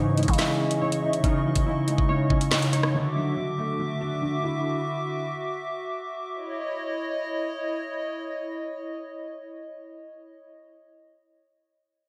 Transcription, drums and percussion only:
0.17 closed hi-hat
0.23 closed hi-hat
0.28 kick, closed hi-hat
0.33 closed hi-hat
0.38 snare, clap, closed hi-hat
0.71 closed hi-hat
0.92 closed hi-hat
1.13 closed hi-hat
1.24 kick, closed hi-hat
1.55 kick, closed hi-hat
1.88 closed hi-hat
1.98 kick
2.30 kick
2.41 closed hi-hat
2.51 snare, clap
2.62 closed hi-hat
2.73 closed hi-hat
2.83 cross-stick

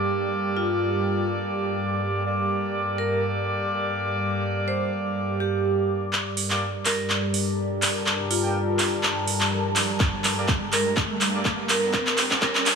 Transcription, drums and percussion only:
6.13 clap
6.37 open hi-hat
6.50 clap
6.85 clap, open hi-hat
7.10 clap
7.34 open hi-hat
7.82 clap, open hi-hat
8.06 clap
8.31 open hi-hat
8.79 clap, open hi-hat
9.03 clap
9.27 open hi-hat
9.41 clap
9.76 clap, open hi-hat
10.00 kick, clap
10.24 clap, open hi-hat
10.48 kick, clap
10.73 clap, open hi-hat
10.97 kick, clap
11.21 clap, open hi-hat
11.45 kick, clap
11.69 clap, open hi-hat
11.94 kick, clap
12.07 clap
12.18 clap, open hi-hat
12.31 kick, clap
12.42 kick, clap
12.55 clap
12.66 clap, open hi-hat

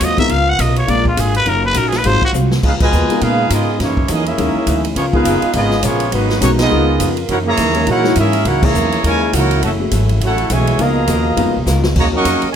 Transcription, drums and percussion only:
0.01 kick, hi-hat pedal, ride
0.18 kick, ride
0.29 kick, ride
0.59 kick, hi-hat pedal, ride
0.76 ride
0.88 kick, ride
1.05 kick
1.17 kick, hi-hat pedal, ride
1.34 ride
1.46 kick, ride
1.74 kick, hi-hat pedal, ride
1.92 snare, ride
2.04 kick, ride
2.22 kick
2.34 hi-hat pedal
2.51 snare
2.63 kick, crash
2.80 kick, crash
2.93 hi-hat pedal
3.10 ride
3.21 kick, ride
3.50 kick, hi-hat pedal, ride
3.80 kick, snare, ride
3.97 kick
4.08 kick, hi-hat pedal, ride
4.26 ride
4.38 kick, ride
4.67 kick, hi-hat pedal, ride
4.85 ride
4.96 kick, ride
5.13 kick
5.25 kick, hi-hat pedal, ride
5.42 ride
5.53 kick, ride
5.71 snare
5.83 kick, hi-hat pedal, ride
6.00 ride
6.12 kick, ride
6.30 snare
6.42 kick, hi-hat pedal, ride
6.59 snare, ride
7.00 kick, hi-hat pedal, ride
7.17 ride
7.29 kick, ride
7.57 kick, hi-hat pedal, ride
7.74 ride
7.87 kick, ride
8.04 snare
8.16 kick, hi-hat pedal, ride
8.33 ride
8.45 kick, ride
8.63 kick, crash
8.75 hi-hat pedal
8.92 ride
9.04 kick, ride
9.33 kick, hi-hat pedal, ride
9.51 ride
9.62 kick, ride
9.91 kick, hi-hat pedal, ride
10.09 ride
10.21 kick, ride
10.38 ride
10.50 kick, hi-hat pedal, ride
10.67 ride
10.79 kick, ride
11.07 kick, hi-hat pedal, ride
11.37 kick, ride
11.66 snare, hi-hat pedal
11.84 snare
11.96 kick, crash
12.25 kick, hi-hat pedal, ride
12.42 ride

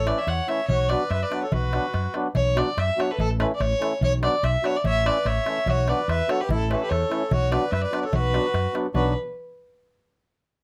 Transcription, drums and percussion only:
0.07 darbuka tek
0.28 darbuka tek
0.49 darbuka tek
0.60 darbuka tek
0.69 darbuka dum
0.81 darbuka tek
0.90 darbuka tek
1.11 darbuka tek
1.22 darbuka tek
1.32 darbuka tek
1.42 darbuka tek
1.52 darbuka dum
1.63 darbuka tek
1.73 darbuka tek
1.94 darbuka tek
2.04 darbuka tek
2.14 darbuka tek
2.35 darbuka dum
2.47 darbuka tek
2.57 darbuka tek
2.68 darbuka tek
2.78 darbuka tek
2.90 darbuka tek
3.00 darbuka tek
3.10 darbuka tek
3.20 darbuka dum
3.31 darbuka tek
3.40 darbuka tek
3.51 darbuka tek
3.61 darbuka tek
3.72 darbuka tek
3.82 darbuka tek
3.93 darbuka tek
4.03 darbuka dum
4.13 darbuka tek
4.23 darbuka tek
4.34 darbuka tek
4.44 darbuka tek
4.55 darbuka tek
4.64 darbuka tek
4.75 darbuka tek
4.85 darbuka dum
4.96 darbuka tek
5.06 darbuka tek
5.26 darbuka tek
5.37 darbuka tek
5.46 darbuka tek
5.59 darbuka tek
5.67 darbuka dum
5.78 darbuka tek
5.88 darbuka tek
6.00 darbuka tek
6.09 darbuka tek
6.20 darbuka tek
6.29 darbuka tek
6.41 darbuka tek
6.50 darbuka dum
6.62 darbuka tek
6.71 darbuka tek
6.82 darbuka tek
6.91 darbuka tek
7.02 darbuka tek
7.11 darbuka tek
7.31 darbuka dum
7.43 darbuka tek
7.52 darbuka tek
7.73 darbuka tek
7.84 darbuka tek
7.93 darbuka tek
8.04 darbuka tek
8.13 darbuka dum
8.25 darbuka tek
8.34 darbuka tek
8.46 darbuka tek
8.54 darbuka tek
8.75 darbuka tek
8.86 darbuka tek
8.95 darbuka dum

